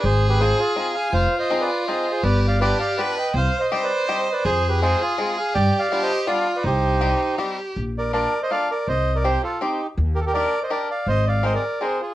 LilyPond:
<<
  \new Staff \with { instrumentName = "Bandoneon" } { \time 3/4 \key c \minor \tempo 4 = 163 << { \tuplet 3/2 { c''4 b'8 } c''8 aes'8 aes'8 aes''8 | \tuplet 3/2 { f''4 ees''8~ ees''8 d''4 ees''4 c''8 } | \tuplet 3/2 { d''4 f''8 } d''8 f''8 d''8 g''8 | \tuplet 3/2 { f''4 ees''8~ ees''8 d''4 ees''4 d''8 } |
\tuplet 3/2 { c''4 b'8 } c''8 aes'8 aes'8 aes''8 | \tuplet 3/2 { g''4 f''8~ f''8 ees''4 } f''8. d''16 | c''2 r4 | \key bes \major r8 d''8 d''8. ees''16 f''8 d''8 |
ees''8. d''16 c''8 a'8 g'8. r16 | r8 bes'32 a'32 bes'16 d''8. ees''16 d''8 f''8 | ees''8 f''8 ees''16 d''8. c''8 aes'8 | } \\ { \tuplet 3/2 { aes'4 g'8 } aes'8 f'8 f'8 f''8 | \tuplet 3/2 { c''4 c''8~ c''8 b'4 c''4 aes'8 } | \tuplet 3/2 { b'4 d''8 } b'8 d''8 b'8 ees''8 | \tuplet 3/2 { c''4 c''8~ c''8 b'4 c''4 b'8 } |
\tuplet 3/2 { aes'4 g'8 } aes'8 f'8 f'8 f''8 | \tuplet 3/2 { d''4 d''8~ d''8 c''4 } d''8. b'16 | g'2 r4 | r8 bes'8 bes'8. c''16 d''8 bes'8 |
c''8. bes'16 g'8 f'8 ees'8. r16 | r8 g'16 g'16 bes'8. c''16 bes'8 d''8 | c''8 d''8 c''16 bes'8. aes'8 f'8 | } >> }
  \new Staff \with { instrumentName = "Violin" } { \time 3/4 \key c \minor aes'2. | f'2. | g'4 g'4 b'4 | c''4 c''2 |
aes'2. | g'4 g'4 f'4 | ees'2 g'4 | \key bes \major r2. |
r2. | r2. | r2. | }
  \new Staff \with { instrumentName = "Five-string banjo" } { \time 3/4 \key c \minor r4 <c' ees' f' aes'>8 r8 <c' ees' f' aes'>8 r8 | r4 <c' ees' f' aes'>8 r8 <c' ees' f' aes'>8 r8 | r4 <b d' f' g'>8 r8 <b d' f' g'>8 r8 | r4 <g c' ees' g'>8 r8 <g c' ees' g'>8 r8 |
r4 <aes c' ees' f'>8 r8 <aes c' ees' f'>8 r8 | r4 <g b d' f'>8 r8 <g b d' f'>8 r8 | r4 <g c' ees' g'>8 r8 <g c' ees' g'>8 r8 | \key bes \major r4 <bes d' f' a'>8 r8 <bes d' f' a'>8 r8 |
r4 <c' ees' g' c''>8 r8 <c' ees' g' c''>8 r8 | r4 <d' ees' g' bes'>8 r8 <d' ees' g' bes'>8 r8 | r4 <c' ees' aes' bes'>8 r8 <c' ees' aes' bes'>8 r8 | }
  \new Staff \with { instrumentName = "Upright bass" } { \clef bass \time 3/4 \key c \minor aes,,2 r4 | f,,8 r2 r8 | g,,2 r4 | c,8 r2 r8 |
f,2 r4 | g,8 r2 r8 | c,2 r4 | \key bes \major bes,,2 r4 |
c,2 r4 | ees,2 r4 | aes,,2 r4 | }
>>